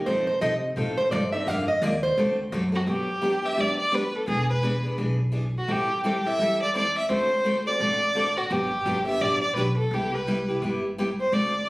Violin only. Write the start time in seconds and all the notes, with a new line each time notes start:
2.75 F#4
2.89 G4
3.46 E5
3.60 D5
3.79 D5
3.95 B4
4.16 A4
4.29 G#4
4.50 B4
5.58 F#4
5.71 G4
6.07 G4
6.27 E5
6.62 D5
6.76 D5
6.98 E5
7.12 C5
7.67 D5
8.37 F#4
8.52 G4
9.07 E5
9.21 D5
9.42 D5
9.57 B4
9.78 A4
9.93 G4
10.14 B4
11.20 C5
11.33 D5